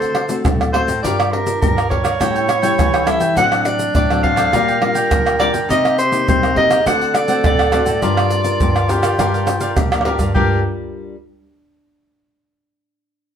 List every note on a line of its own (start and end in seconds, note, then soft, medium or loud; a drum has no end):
0.00 0.37 D3 medium
0.00 0.42 D3 medium
0.00 0.14 A3 soft
0.00 0.15 C4 medium
0.00 0.15 F#4 medium
0.00 0.44 A4 loud
0.00 0.43 C5 medium
0.00 pandeiro soft
0.00 shaker soft
0.15 pandeiro medium
0.15 tamborim medium
0.29 0.69 A3 medium
0.29 0.69 C4 medium
0.29 0.69 F#4 medium
0.29 pandeiro medium
0.29 shaker medium
0.45 0.82 A2 medium
0.45 1.01 A2 medium
0.45 1.05 A4 medium
0.45 pandeiro medium
0.45 tamborim medium
0.45 shaker medium
0.45 surdo loud
0.61 pandeiro soft
0.61 tamborim medium
0.61 shaker soft
0.73 0.91 A3 medium
0.73 0.92 C4 soft
0.73 0.92 F#4 medium
0.73 1.01 C5 medium
0.73 pandeiro medium
0.73 tamborim medium
0.87 1.00 A2 medium
0.87 pandeiro medium
0.87 shaker medium
1.03 1.53 G2 medium
1.03 1.59 G3 medium
1.03 1.31 D4 soft
1.03 1.31 F4 soft
1.03 1.93 G4 medium
1.03 1.17 G4 medium
1.03 1.31 A#4 medium
1.03 1.17 A#4 medium
1.03 1.33 D5 medium
1.03 1.18 D5 medium
1.03 1.18 F5 medium
1.03 pandeiro medium
1.03 shaker medium
1.03 surdo medium
1.19 1.32 A#4 soft
1.19 1.32 D5 soft
1.19 1.32 F5 soft
1.19 pandeiro soft
1.19 tamborim medium
1.19 shaker soft
1.32 1.61 A#4 medium
1.32 muted cavaquinho stroke soft
1.32 pandeiro medium
1.46 1.86 D4 medium
1.46 1.86 F4 medium
1.46 1.86 A#4 medium
1.46 pandeiro medium
1.46 shaker medium
1.61 2.11 G2 medium
1.61 2.17 D3 medium
1.61 1.89 A#4 medium
1.61 pandeiro medium
1.61 shaker medium
1.61 surdo loud
1.76 1.89 A#4 soft
1.76 1.89 D5 soft
1.76 1.90 F5 soft
1.76 pandeiro soft
1.76 tamborim medium
1.76 shaker soft
1.89 2.08 D4 medium
1.89 2.08 F4 medium
1.89 2.04 G4 soft
1.89 2.04 A#4 soft
1.89 2.08 A#4 medium
1.89 3.09 C#5 loud
1.89 2.03 D5 medium
1.89 2.02 F5 medium
1.89 pandeiro medium
1.89 surdo medium
2.04 2.19 A#4 medium
2.04 2.18 D5 medium
2.04 2.18 F5 medium
2.04 pandeiro medium
2.04 tamborim medium
2.04 shaker medium
2.19 2.75 A2 soft
2.19 2.70 A2 medium
2.19 2.47 G3 soft
2.19 2.48 C#4 soft
2.19 2.33 E4 medium
2.19 3.38 E4 medium
2.19 2.48 E4 medium
2.19 2.34 A4 medium
2.19 2.34 C#5 medium
2.19 2.34 G5 medium
2.19 pandeiro medium
2.19 tamborim medium
2.19 shaker medium
2.19 surdo medium
2.35 2.47 A4 soft
2.35 2.48 C#5 soft
2.35 2.48 G5 soft
2.35 pandeiro soft
2.35 shaker soft
2.48 muted cavaquinho stroke soft
2.48 pandeiro medium
2.48 tamborim medium
2.48 shaker medium
2.62 3.02 G3 medium
2.62 3.02 C#4 medium
2.62 3.02 E4 medium
2.62 2.92 A4 medium
2.62 2.91 C#5 medium
2.62 2.91 G5 medium
2.62 pandeiro medium
2.62 shaker medium
2.78 3.33 E3 medium
2.78 3.15 E3 medium
2.78 pandeiro medium
2.78 tamborim medium
2.78 shaker medium
2.78 surdo loud
2.93 3.06 A4 soft
2.93 3.06 C#5 soft
2.93 3.06 G5 soft
2.93 pandeiro soft
2.93 tamborim medium
2.93 shaker soft
3.06 3.31 G3 medium
3.06 3.31 C#4 medium
3.06 3.20 E4 medium
3.06 3.32 E4 medium
3.06 3.21 A4 medium
3.06 3.19 C#5 medium
3.06 3.36 E5 medium
3.06 3.19 G5 medium
3.06 pandeiro medium
3.06 tamborim medium
3.06 shaker medium
3.20 3.33 E3 medium
3.20 3.35 A4 soft
3.20 3.35 C#5 soft
3.20 3.34 G5 soft
3.20 pandeiro medium
3.20 shaker medium
3.35 3.86 A2 medium
3.35 3.92 A2 medium
3.35 3.45 F#3 medium
3.35 3.45 C4 medium
3.35 4.55 D4 medium
3.35 3.46 D4 medium
3.35 3.49 F#4 medium
3.35 3.50 A4 medium
3.35 3.50 C5 medium
3.35 3.50 D5 medium
3.35 3.67 F#5 loud
3.35 pandeiro medium
3.35 shaker medium
3.35 surdo medium
3.51 4.05 F#3 medium
3.51 4.05 C4 medium
3.51 4.05 D4 medium
3.51 3.63 A4 soft
3.51 3.64 C5 soft
3.51 3.64 D5 soft
3.51 pandeiro soft
3.51 tamborim medium
3.51 shaker soft
3.64 3.95 D5 medium
3.64 muted cavaquinho stroke soft
3.64 pandeiro medium
3.64 shaker medium
3.79 pandeiro medium
3.79 shaker medium
3.95 4.44 A2 medium
3.95 4.50 A2 medium
3.95 4.22 D5 medium
3.95 pandeiro medium
3.95 shaker medium
3.95 surdo medium
4.09 4.49 F#3 medium
4.09 4.49 C4 medium
4.09 4.49 D4 medium
4.09 4.22 A4 soft
4.09 4.22 C5 soft
4.09 4.22 D5 soft
4.09 pandeiro soft
4.09 tamborim medium
4.09 shaker soft
4.23 4.37 F#4 medium
4.23 4.37 A4 soft
4.23 4.36 C5 medium
4.23 4.35 D5 medium
4.23 5.09 F5 loud
4.23 pandeiro medium
4.23 surdo medium
4.36 4.52 A4 medium
4.36 4.51 C5 medium
4.36 4.51 D5 medium
4.36 pandeiro medium
4.36 tamborim medium
4.36 shaker medium
4.52 5.02 A#2 medium
4.52 5.08 A#2 medium
4.52 4.77 G3 medium
4.52 4.78 D4 soft
4.52 4.66 F4 medium
4.52 4.78 F4 medium
4.52 5.71 A#4 loud
4.52 4.66 A#4 medium
4.52 4.67 D5 medium
4.52 4.67 G5 medium
4.52 pandeiro medium
4.52 tamborim medium
4.52 shaker medium
4.52 surdo medium
4.68 4.81 A#4 soft
4.68 4.81 D5 soft
4.68 4.81 G5 soft
4.68 pandeiro soft
4.68 shaker soft
4.81 5.35 G3 medium
4.81 5.35 D4 medium
4.81 5.36 F4 medium
4.81 muted cavaquinho stroke soft
4.81 pandeiro medium
4.81 tamborim medium
4.95 5.24 A#4 medium
4.95 5.24 D5 medium
4.95 5.24 G5 medium
4.95 pandeiro medium
4.95 shaker medium
5.11 5.66 A#2 medium
5.11 5.48 D3 medium
5.11 pandeiro medium
5.11 tamborim medium
5.11 shaker medium
5.11 surdo medium
5.25 5.38 A#4 soft
5.25 5.38 D5 soft
5.25 5.39 G5 soft
5.25 pandeiro soft
5.25 tamborim medium
5.25 shaker soft
5.39 5.57 G3 soft
5.39 5.57 D4 medium
5.39 5.53 F4 medium
5.39 5.58 F4 medium
5.39 5.53 A#4 medium
5.39 5.52 D5 medium
5.39 5.53 D5 medium
5.39 5.52 G5 medium
5.39 pandeiro medium
5.39 tamborim medium
5.53 5.67 D3 medium
5.53 5.68 A#4 soft
5.53 5.68 D5 soft
5.53 5.67 G5 soft
5.53 pandeiro medium
5.53 shaker medium
5.68 6.19 C3 medium
5.68 6.25 C3 medium
5.68 5.97 A#3 soft
5.68 5.82 D#4 medium
5.68 5.97 D#4 medium
5.68 6.59 G4 medium
5.68 5.97 G4 medium
5.68 5.82 A#4 medium
5.68 5.83 C5 medium
5.68 5.83 D#5 medium
5.68 5.97 D#5 medium
5.68 pandeiro medium
5.68 shaker medium
5.68 surdo medium
5.84 5.97 A#4 soft
5.84 5.97 C5 soft
5.84 5.97 D#5 soft
5.84 pandeiro soft
5.84 tamborim medium
5.84 shaker soft
5.98 6.25 C5 medium
5.98 muted cavaquinho stroke soft
5.98 pandeiro medium
5.98 shaker medium
6.11 6.51 A#3 medium
6.11 6.52 D#4 medium
6.11 6.52 G4 medium
6.11 pandeiro medium
6.11 shaker medium
6.28 6.77 C3 medium
6.28 6.83 G3 medium
6.28 6.55 C5 medium
6.28 pandeiro medium
6.28 shaker medium
6.28 surdo medium
6.43 6.56 A#4 soft
6.43 6.56 C5 soft
6.43 6.56 D#5 soft
6.43 pandeiro soft
6.43 tamborim medium
6.43 shaker soft
6.56 6.81 A#3 medium
6.56 6.81 D#4 medium
6.56 6.70 D#4 soft
6.56 6.81 G4 medium
6.56 6.70 A#4 soft
6.56 6.70 C5 medium
6.56 6.84 D#5 medium
6.56 6.69 D#5 medium
6.56 pandeiro medium
6.56 surdo medium
6.70 6.85 A#4 medium
6.70 6.85 C5 medium
6.70 6.84 D#5 medium
6.70 pandeiro medium
6.70 tamborim medium
6.70 shaker medium
6.79 6.87 G#4 medium
6.85 7.35 D3 medium
6.85 7.41 D3 medium
6.85 7.25 A3 soft
6.85 7.25 C4 medium
6.85 6.99 D4 medium
6.85 7.25 F#4 medium
6.85 8.03 A4 loud
6.85 6.99 C5 medium
6.85 7.00 D5 medium
6.85 7.16 F#5 loud
6.85 7.00 F#5 medium
6.85 pandeiro medium
6.85 tamborim medium
6.85 shaker medium
6.85 surdo medium
7.01 7.13 C5 soft
7.01 7.14 D5 soft
7.01 7.14 F#5 soft
7.01 pandeiro soft
7.01 shaker soft
7.14 7.44 D5 medium
7.14 muted cavaquinho stroke soft
7.14 pandeiro medium
7.14 tamborim medium
7.14 shaker medium
7.28 7.68 A3 medium
7.28 7.68 C4 medium
7.28 7.68 F#4 medium
7.28 7.58 C5 medium
7.28 7.57 D5 medium
7.28 7.57 F#5 medium
7.28 pandeiro medium
7.28 shaker medium
7.44 7.81 A2 medium
7.44 7.72 D5 medium
7.44 pandeiro medium
7.44 tamborim medium
7.44 shaker medium
7.44 surdo loud
7.59 7.72 C5 soft
7.59 7.73 D5 soft
7.59 7.72 F#5 soft
7.59 pandeiro soft
7.59 tamborim medium
7.59 shaker soft
7.72 7.90 A3 medium
7.72 7.91 C4 medium
7.72 7.86 D4 medium
7.72 7.91 F#4 medium
7.72 7.86 C5 medium
7.72 8.91 D5 loud
7.72 7.85 D5 medium
7.72 7.84 F#5 medium
7.72 pandeiro medium
7.72 tamborim medium
7.72 shaker medium
7.85 7.99 A2 medium
7.85 8.01 C5 soft
7.85 8.00 D5 soft
7.85 8.00 F#5 soft
7.85 pandeiro soft
7.85 shaker medium
8.01 8.52 G2 medium
8.01 8.58 G3 medium
8.01 8.42 D4 medium
8.01 9.78 F4 loud
8.01 8.42 F4 medium
8.01 8.15 G4 medium
8.01 8.16 A#4 medium
8.01 8.42 A#4 medium
8.01 8.16 D5 medium
8.01 8.15 F5 medium
8.01 pandeiro medium
8.01 shaker medium
8.01 surdo medium
8.17 8.29 A#4 soft
8.17 8.30 D5 soft
8.17 8.30 F5 soft
8.17 pandeiro soft
8.17 tamborim medium
8.17 shaker soft
8.30 muted cavaquinho stroke soft
8.30 pandeiro medium
8.30 shaker medium
8.44 8.84 D4 soft
8.44 8.84 F4 medium
8.44 8.85 A#4 medium
8.44 pandeiro medium
8.44 shaker medium
8.60 9.10 G2 medium
8.60 9.16 D3 medium
8.60 pandeiro medium
8.60 shaker medium
8.60 surdo medium
8.75 8.88 A#4 soft
8.75 8.88 D5 soft
8.75 8.89 F5 soft
8.75 pandeiro soft
8.75 tamborim medium
8.75 shaker soft
8.89 9.14 D4 soft
8.89 9.14 F4 medium
8.89 9.02 G4 soft
8.89 9.77 G4 medium
8.89 9.02 A#4 soft
8.89 9.14 A#4 medium
8.89 9.02 D5 medium
8.89 9.01 F5 medium
8.89 pandeiro medium
8.89 shaker medium
9.02 9.17 A#4 medium
9.02 9.17 D5 medium
9.02 9.17 F5 medium
9.02 pandeiro medium
9.02 tamborim medium
9.02 shaker medium
9.18 9.68 G2 medium
9.18 9.74 G3 soft
9.18 9.58 D4 soft
9.18 9.58 F4 soft
9.18 9.32 G4 medium
9.18 9.32 A#4 medium
9.18 9.58 A#4 medium
9.18 9.32 D5 medium
9.18 9.33 F5 medium
9.18 pandeiro medium
9.18 tamborim medium
9.18 shaker medium
9.18 surdo medium
9.34 9.46 A#4 soft
9.34 9.46 D5 soft
9.34 9.47 F5 soft
9.34 pandeiro soft
9.34 shaker soft
9.47 muted cavaquinho stroke soft
9.47 pandeiro medium
9.47 tamborim medium
9.47 shaker medium
9.61 10.01 D4 medium
9.61 10.01 F4 medium
9.61 10.01 A#4 medium
9.61 9.90 A#4 soft
9.61 9.90 D5 medium
9.61 9.89 F5 medium
9.61 pandeiro medium
9.61 shaker medium
9.76 9.90 C3 medium
9.76 10.32 D3 soft
9.76 10.35 G4 medium
9.76 pandeiro medium
9.76 tamborim medium
9.76 shaker medium
9.76 surdo medium
9.92 10.05 A#2 medium
9.92 10.04 A#4 soft
9.92 10.05 D5 soft
9.92 10.05 F5 soft
9.92 pandeiro soft
9.92 tamborim medium
9.92 shaker soft
10.01 10.19 A2 medium
10.01 10.23 D4 medium
10.01 10.19 G4 medium
10.01 tamborim medium
10.05 10.23 F4 medium
10.05 10.19 A#4 medium
10.05 10.23 A#4 medium
10.05 10.18 D5 medium
10.05 10.18 F5 medium
10.05 pandeiro medium
10.19 10.33 G2 medium
10.19 10.34 A#4 soft
10.19 10.33 D5 soft
10.19 10.33 F5 soft
10.19 pandeiro soft
10.19 shaker medium
10.19 surdo medium
10.34 10.62 G2 medium
10.34 11.15 G3 medium
10.34 11.15 D4 medium
10.34 11.15 F4 medium
10.34 10.62 G4 medium
10.34 10.58 G4 medium
10.34 10.58 A#4 medium
10.34 10.62 A#4 medium
10.34 11.15 A#4 medium
10.34 10.59 D5 medium
10.34 10.59 F5 medium
10.34 surdo medium